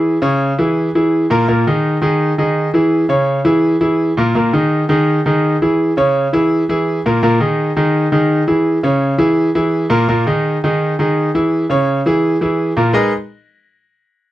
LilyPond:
\new Staff \with { instrumentName = "Grand piano" } { \time 4/4 \key cis \dorian \tempo 4 = 167 <e e' gis'>8 <cis cis' cis''>4 <e e' gis'>4 <e e' gis'>4 <ais, ais ais'>8 | <ais, ais ais'>8 <dis dis' gis'>4 <dis dis' gis'>4 <dis dis' gis'>4 <e e' gis'>8~ | <e e' gis'>8 <cis cis' cis''>4 <e e' gis'>4 <e e' gis'>4 <ais, ais ais'>8 | <ais, ais ais'>8 <dis dis' gis'>4 <dis dis' gis'>4 <dis dis' gis'>4 <e e' gis'>8~ |
<e e' gis'>8 <cis cis' cis''>4 <e e' gis'>4 <e e' gis'>4 <ais, ais ais'>8 | <ais, ais ais'>8 <dis dis' gis'>4 <dis dis' gis'>4 <dis dis' gis'>4 <e e' gis'>8~ | <e e' gis'>8 <cis cis' cis''>4 <e e' gis'>4 <e e' gis'>4 <ais, ais ais'>8 | <ais, ais ais'>8 <dis dis' gis'>4 <dis dis' gis'>4 <dis dis' gis'>4 <e e' gis'>8~ |
<e e' gis'>8 <cis cis' cis''>4 <e e' gis'>4 <e e' gis'>4 <ais, ais ais'>8 | <gis dis' gis' ais' b' dis''>8 r2. r8 | }